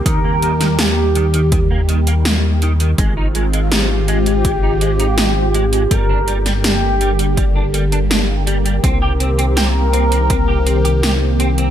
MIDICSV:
0, 0, Header, 1, 6, 480
1, 0, Start_track
1, 0, Tempo, 731707
1, 38, Time_signature, 4, 2, 24, 8
1, 7680, End_track
2, 0, Start_track
2, 0, Title_t, "Analog synth lead"
2, 0, Program_c, 0, 81
2, 40, Note_on_c, 0, 70, 105
2, 518, Note_on_c, 0, 67, 102
2, 528, Note_off_c, 0, 70, 0
2, 1142, Note_off_c, 0, 67, 0
2, 2441, Note_on_c, 0, 67, 109
2, 3878, Note_on_c, 0, 70, 103
2, 3888, Note_off_c, 0, 67, 0
2, 4198, Note_off_c, 0, 70, 0
2, 4357, Note_on_c, 0, 67, 102
2, 4981, Note_off_c, 0, 67, 0
2, 6277, Note_on_c, 0, 70, 110
2, 7621, Note_off_c, 0, 70, 0
2, 7680, End_track
3, 0, Start_track
3, 0, Title_t, "Analog synth pad"
3, 0, Program_c, 1, 89
3, 0, Note_on_c, 1, 58, 78
3, 0, Note_on_c, 1, 67, 96
3, 39, Note_on_c, 1, 51, 84
3, 39, Note_on_c, 1, 55, 79
3, 1931, Note_off_c, 1, 58, 0
3, 1932, Note_off_c, 1, 67, 0
3, 1939, Note_off_c, 1, 55, 0
3, 1960, Note_on_c, 1, 56, 74
3, 1960, Note_on_c, 1, 60, 77
3, 1961, Note_on_c, 1, 65, 94
3, 3852, Note_off_c, 1, 51, 0
3, 3860, Note_off_c, 1, 56, 0
3, 3860, Note_off_c, 1, 60, 0
3, 3860, Note_off_c, 1, 65, 0
3, 3879, Note_on_c, 1, 50, 87
3, 3879, Note_on_c, 1, 55, 77
3, 3879, Note_on_c, 1, 67, 96
3, 3880, Note_on_c, 1, 58, 77
3, 5779, Note_off_c, 1, 50, 0
3, 5779, Note_off_c, 1, 55, 0
3, 5797, Note_on_c, 1, 51, 82
3, 5797, Note_on_c, 1, 60, 79
3, 7680, Note_off_c, 1, 51, 0
3, 7680, Note_off_c, 1, 58, 0
3, 7680, Note_off_c, 1, 60, 0
3, 7680, Note_off_c, 1, 67, 0
3, 7680, End_track
4, 0, Start_track
4, 0, Title_t, "Clean electric guitar"
4, 0, Program_c, 2, 27
4, 37, Note_on_c, 2, 51, 77
4, 128, Note_off_c, 2, 51, 0
4, 159, Note_on_c, 2, 58, 72
4, 219, Note_off_c, 2, 58, 0
4, 278, Note_on_c, 2, 51, 70
4, 338, Note_off_c, 2, 51, 0
4, 399, Note_on_c, 2, 51, 99
4, 434, Note_off_c, 2, 51, 0
4, 520, Note_on_c, 2, 58, 79
4, 579, Note_off_c, 2, 58, 0
4, 761, Note_on_c, 2, 51, 94
4, 819, Note_off_c, 2, 51, 0
4, 881, Note_on_c, 2, 51, 74
4, 916, Note_off_c, 2, 51, 0
4, 1001, Note_on_c, 2, 51, 79
4, 1035, Note_off_c, 2, 51, 0
4, 1120, Note_on_c, 2, 58, 73
4, 1179, Note_off_c, 2, 58, 0
4, 1241, Note_on_c, 2, 51, 73
4, 1299, Note_off_c, 2, 51, 0
4, 1360, Note_on_c, 2, 58, 96
4, 1395, Note_off_c, 2, 58, 0
4, 1482, Note_on_c, 2, 58, 79
4, 1540, Note_off_c, 2, 58, 0
4, 1722, Note_on_c, 2, 51, 97
4, 1780, Note_off_c, 2, 51, 0
4, 1841, Note_on_c, 2, 51, 78
4, 1900, Note_off_c, 2, 51, 0
4, 1961, Note_on_c, 2, 56, 79
4, 2049, Note_off_c, 2, 56, 0
4, 2080, Note_on_c, 2, 63, 75
4, 2139, Note_off_c, 2, 63, 0
4, 2201, Note_on_c, 2, 56, 73
4, 2259, Note_off_c, 2, 56, 0
4, 2319, Note_on_c, 2, 56, 97
4, 2355, Note_off_c, 2, 56, 0
4, 2439, Note_on_c, 2, 63, 80
4, 2499, Note_off_c, 2, 63, 0
4, 2679, Note_on_c, 2, 56, 94
4, 2738, Note_off_c, 2, 56, 0
4, 2798, Note_on_c, 2, 56, 74
4, 2834, Note_off_c, 2, 56, 0
4, 2918, Note_on_c, 2, 56, 76
4, 2954, Note_off_c, 2, 56, 0
4, 3038, Note_on_c, 2, 63, 71
4, 3098, Note_off_c, 2, 63, 0
4, 3158, Note_on_c, 2, 56, 73
4, 3218, Note_off_c, 2, 56, 0
4, 3278, Note_on_c, 2, 63, 97
4, 3314, Note_off_c, 2, 63, 0
4, 3397, Note_on_c, 2, 63, 77
4, 3457, Note_off_c, 2, 63, 0
4, 3637, Note_on_c, 2, 56, 91
4, 3698, Note_off_c, 2, 56, 0
4, 3758, Note_on_c, 2, 56, 74
4, 3818, Note_off_c, 2, 56, 0
4, 3877, Note_on_c, 2, 55, 78
4, 3967, Note_off_c, 2, 55, 0
4, 3997, Note_on_c, 2, 62, 74
4, 4057, Note_off_c, 2, 62, 0
4, 4116, Note_on_c, 2, 55, 68
4, 4177, Note_off_c, 2, 55, 0
4, 4238, Note_on_c, 2, 55, 97
4, 4274, Note_off_c, 2, 55, 0
4, 4359, Note_on_c, 2, 62, 81
4, 4419, Note_off_c, 2, 62, 0
4, 4600, Note_on_c, 2, 55, 92
4, 4659, Note_off_c, 2, 55, 0
4, 4718, Note_on_c, 2, 55, 72
4, 4754, Note_off_c, 2, 55, 0
4, 4836, Note_on_c, 2, 55, 78
4, 4873, Note_off_c, 2, 55, 0
4, 4957, Note_on_c, 2, 62, 73
4, 5017, Note_off_c, 2, 62, 0
4, 5077, Note_on_c, 2, 55, 73
4, 5137, Note_off_c, 2, 55, 0
4, 5197, Note_on_c, 2, 62, 96
4, 5233, Note_off_c, 2, 62, 0
4, 5316, Note_on_c, 2, 62, 80
4, 5377, Note_off_c, 2, 62, 0
4, 5554, Note_on_c, 2, 55, 94
4, 5616, Note_off_c, 2, 55, 0
4, 5676, Note_on_c, 2, 55, 73
4, 5737, Note_off_c, 2, 55, 0
4, 5797, Note_on_c, 2, 60, 81
4, 5887, Note_off_c, 2, 60, 0
4, 5916, Note_on_c, 2, 67, 77
4, 5977, Note_off_c, 2, 67, 0
4, 6035, Note_on_c, 2, 60, 68
4, 6096, Note_off_c, 2, 60, 0
4, 6156, Note_on_c, 2, 60, 100
4, 6193, Note_off_c, 2, 60, 0
4, 6275, Note_on_c, 2, 67, 81
4, 6336, Note_off_c, 2, 67, 0
4, 6515, Note_on_c, 2, 60, 94
4, 6577, Note_off_c, 2, 60, 0
4, 6636, Note_on_c, 2, 60, 75
4, 6673, Note_off_c, 2, 60, 0
4, 6755, Note_on_c, 2, 60, 79
4, 6792, Note_off_c, 2, 60, 0
4, 6874, Note_on_c, 2, 67, 72
4, 6936, Note_off_c, 2, 67, 0
4, 6994, Note_on_c, 2, 60, 74
4, 7056, Note_off_c, 2, 60, 0
4, 7115, Note_on_c, 2, 67, 96
4, 7153, Note_off_c, 2, 67, 0
4, 7235, Note_on_c, 2, 67, 81
4, 7296, Note_off_c, 2, 67, 0
4, 7476, Note_on_c, 2, 60, 98
4, 7537, Note_off_c, 2, 60, 0
4, 7596, Note_on_c, 2, 60, 75
4, 7657, Note_off_c, 2, 60, 0
4, 7680, End_track
5, 0, Start_track
5, 0, Title_t, "Analog synth bass"
5, 0, Program_c, 3, 38
5, 38, Note_on_c, 3, 39, 87
5, 1934, Note_off_c, 3, 39, 0
5, 1958, Note_on_c, 3, 32, 90
5, 3854, Note_off_c, 3, 32, 0
5, 3877, Note_on_c, 3, 31, 89
5, 5774, Note_off_c, 3, 31, 0
5, 5797, Note_on_c, 3, 36, 88
5, 7680, Note_off_c, 3, 36, 0
5, 7680, End_track
6, 0, Start_track
6, 0, Title_t, "Drums"
6, 38, Note_on_c, 9, 36, 118
6, 38, Note_on_c, 9, 42, 91
6, 103, Note_off_c, 9, 36, 0
6, 104, Note_off_c, 9, 42, 0
6, 278, Note_on_c, 9, 42, 64
6, 344, Note_off_c, 9, 42, 0
6, 398, Note_on_c, 9, 38, 35
6, 398, Note_on_c, 9, 42, 63
6, 463, Note_off_c, 9, 38, 0
6, 463, Note_off_c, 9, 42, 0
6, 516, Note_on_c, 9, 38, 114
6, 516, Note_on_c, 9, 42, 84
6, 582, Note_off_c, 9, 38, 0
6, 582, Note_off_c, 9, 42, 0
6, 757, Note_on_c, 9, 42, 66
6, 823, Note_off_c, 9, 42, 0
6, 878, Note_on_c, 9, 42, 62
6, 943, Note_off_c, 9, 42, 0
6, 997, Note_on_c, 9, 36, 120
6, 997, Note_on_c, 9, 42, 92
6, 1062, Note_off_c, 9, 42, 0
6, 1063, Note_off_c, 9, 36, 0
6, 1238, Note_on_c, 9, 42, 65
6, 1304, Note_off_c, 9, 42, 0
6, 1358, Note_on_c, 9, 42, 64
6, 1424, Note_off_c, 9, 42, 0
6, 1477, Note_on_c, 9, 38, 122
6, 1477, Note_on_c, 9, 42, 88
6, 1543, Note_off_c, 9, 38, 0
6, 1543, Note_off_c, 9, 42, 0
6, 1718, Note_on_c, 9, 42, 64
6, 1784, Note_off_c, 9, 42, 0
6, 1837, Note_on_c, 9, 42, 64
6, 1903, Note_off_c, 9, 42, 0
6, 1957, Note_on_c, 9, 36, 117
6, 1957, Note_on_c, 9, 42, 85
6, 2023, Note_off_c, 9, 36, 0
6, 2023, Note_off_c, 9, 42, 0
6, 2197, Note_on_c, 9, 42, 60
6, 2263, Note_off_c, 9, 42, 0
6, 2319, Note_on_c, 9, 42, 61
6, 2384, Note_off_c, 9, 42, 0
6, 2438, Note_on_c, 9, 38, 114
6, 2438, Note_on_c, 9, 42, 85
6, 2503, Note_off_c, 9, 38, 0
6, 2503, Note_off_c, 9, 42, 0
6, 2677, Note_on_c, 9, 42, 62
6, 2743, Note_off_c, 9, 42, 0
6, 2796, Note_on_c, 9, 42, 61
6, 2862, Note_off_c, 9, 42, 0
6, 2917, Note_on_c, 9, 36, 118
6, 2917, Note_on_c, 9, 42, 89
6, 2983, Note_off_c, 9, 36, 0
6, 2983, Note_off_c, 9, 42, 0
6, 3157, Note_on_c, 9, 42, 62
6, 3222, Note_off_c, 9, 42, 0
6, 3277, Note_on_c, 9, 42, 62
6, 3343, Note_off_c, 9, 42, 0
6, 3396, Note_on_c, 9, 38, 116
6, 3396, Note_on_c, 9, 42, 86
6, 3461, Note_off_c, 9, 38, 0
6, 3461, Note_off_c, 9, 42, 0
6, 3637, Note_on_c, 9, 42, 61
6, 3703, Note_off_c, 9, 42, 0
6, 3757, Note_on_c, 9, 42, 61
6, 3823, Note_off_c, 9, 42, 0
6, 3877, Note_on_c, 9, 36, 114
6, 3877, Note_on_c, 9, 42, 86
6, 3943, Note_off_c, 9, 36, 0
6, 3943, Note_off_c, 9, 42, 0
6, 4118, Note_on_c, 9, 42, 61
6, 4183, Note_off_c, 9, 42, 0
6, 4237, Note_on_c, 9, 38, 34
6, 4237, Note_on_c, 9, 42, 60
6, 4302, Note_off_c, 9, 38, 0
6, 4302, Note_off_c, 9, 42, 0
6, 4357, Note_on_c, 9, 38, 109
6, 4357, Note_on_c, 9, 42, 84
6, 4423, Note_off_c, 9, 38, 0
6, 4423, Note_off_c, 9, 42, 0
6, 4597, Note_on_c, 9, 42, 61
6, 4663, Note_off_c, 9, 42, 0
6, 4718, Note_on_c, 9, 42, 59
6, 4783, Note_off_c, 9, 42, 0
6, 4837, Note_on_c, 9, 36, 113
6, 4838, Note_on_c, 9, 42, 86
6, 4903, Note_off_c, 9, 36, 0
6, 4903, Note_off_c, 9, 42, 0
6, 5077, Note_on_c, 9, 42, 59
6, 5143, Note_off_c, 9, 42, 0
6, 5197, Note_on_c, 9, 42, 59
6, 5263, Note_off_c, 9, 42, 0
6, 5318, Note_on_c, 9, 38, 113
6, 5318, Note_on_c, 9, 42, 82
6, 5384, Note_off_c, 9, 38, 0
6, 5384, Note_off_c, 9, 42, 0
6, 5557, Note_on_c, 9, 42, 59
6, 5623, Note_off_c, 9, 42, 0
6, 5678, Note_on_c, 9, 42, 60
6, 5744, Note_off_c, 9, 42, 0
6, 5797, Note_on_c, 9, 36, 105
6, 5798, Note_on_c, 9, 42, 84
6, 5863, Note_off_c, 9, 36, 0
6, 5863, Note_off_c, 9, 42, 0
6, 6037, Note_on_c, 9, 42, 60
6, 6103, Note_off_c, 9, 42, 0
6, 6158, Note_on_c, 9, 42, 59
6, 6224, Note_off_c, 9, 42, 0
6, 6277, Note_on_c, 9, 38, 104
6, 6277, Note_on_c, 9, 42, 82
6, 6342, Note_off_c, 9, 38, 0
6, 6342, Note_off_c, 9, 42, 0
6, 6517, Note_on_c, 9, 42, 59
6, 6583, Note_off_c, 9, 42, 0
6, 6638, Note_on_c, 9, 42, 61
6, 6703, Note_off_c, 9, 42, 0
6, 6756, Note_on_c, 9, 42, 83
6, 6757, Note_on_c, 9, 36, 112
6, 6822, Note_off_c, 9, 42, 0
6, 6823, Note_off_c, 9, 36, 0
6, 6997, Note_on_c, 9, 42, 59
6, 7062, Note_off_c, 9, 42, 0
6, 7118, Note_on_c, 9, 42, 61
6, 7183, Note_off_c, 9, 42, 0
6, 7238, Note_on_c, 9, 38, 108
6, 7238, Note_on_c, 9, 42, 82
6, 7303, Note_off_c, 9, 38, 0
6, 7303, Note_off_c, 9, 42, 0
6, 7477, Note_on_c, 9, 42, 60
6, 7543, Note_off_c, 9, 42, 0
6, 7596, Note_on_c, 9, 42, 58
6, 7662, Note_off_c, 9, 42, 0
6, 7680, End_track
0, 0, End_of_file